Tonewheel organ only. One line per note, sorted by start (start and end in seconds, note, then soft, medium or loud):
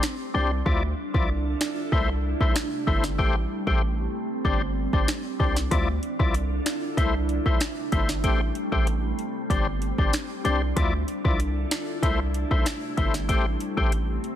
0.34 0.51 G3 medium
0.34 0.51 D4 medium
0.34 0.52 C5 medium
0.66 0.83 F3 loud
0.66 0.83 E4 medium
0.66 0.83 D5 loud
1.14 1.29 F3 medium
1.14 1.30 E4 medium
1.14 1.30 D5 medium
1.92 2.09 A3 loud
1.92 2.09 E4 medium
1.92 2.10 C5 loud
2.41 2.56 A3 medium
2.41 2.56 E4 medium
2.41 2.56 C5 medium
2.87 3.04 A3 medium
2.87 3.04 E4 medium
2.87 3.04 C5 medium
3.19 3.36 A3 medium
3.19 3.36 G4 medium
3.19 3.36 C5 loud
3.67 3.82 A3 medium
3.67 3.82 G4 medium
3.67 3.82 C5 medium
4.45 4.62 G3 medium
4.45 4.62 D4 medium
4.45 4.62 C5 loud
4.93 5.08 G3 medium
4.93 5.09 D4 medium
4.93 5.09 C5 medium
5.39 5.57 G3 medium
5.39 5.57 D4 medium
5.39 5.57 C5 medium
5.71 5.88 F3 loud
5.71 5.88 E4 medium
5.71 5.88 D5 loud
6.19 6.35 F3 medium
6.19 6.35 E4 medium
6.19 6.35 D5 medium
6.97 7.14 A3 medium
6.97 7.15 E4 medium
6.97 7.15 C5 loud
7.46 7.61 A3 medium
7.46 7.61 E4 medium
7.46 7.61 C5 medium
7.92 8.09 A3 medium
7.92 8.09 E4 medium
7.92 8.10 C5 medium
8.24 8.41 A3 loud
8.24 8.41 G4 medium
8.24 8.41 C5 loud
8.72 8.87 A3 medium
8.72 8.87 G4 medium
8.72 8.88 C5 medium
9.50 9.67 G3 medium
9.50 9.67 D4 medium
9.50 9.67 C5 loud
9.98 10.14 G3 medium
9.98 10.14 D4 medium
9.98 10.14 C5 medium
10.45 10.62 G3 medium
10.45 10.62 D4 medium
10.45 10.62 C5 medium
10.76 10.93 F3 loud
10.76 10.94 E4 medium
10.76 10.94 D5 loud
11.25 11.40 F3 medium
11.25 11.40 E4 medium
11.25 11.40 D5 medium
12.03 12.20 A3 medium
12.03 12.20 E4 medium
12.03 12.20 C5 loud
12.51 12.66 A3 medium
12.51 12.66 E4 medium
12.51 12.66 C5 medium
12.97 13.14 A3 medium
12.97 13.15 E4 medium
12.97 13.15 C5 medium
13.29 13.46 A3 loud
13.29 13.46 G4 medium
13.29 13.46 C5 loud
13.77 13.92 A3 medium
13.77 13.93 G4 medium
13.77 13.93 C5 medium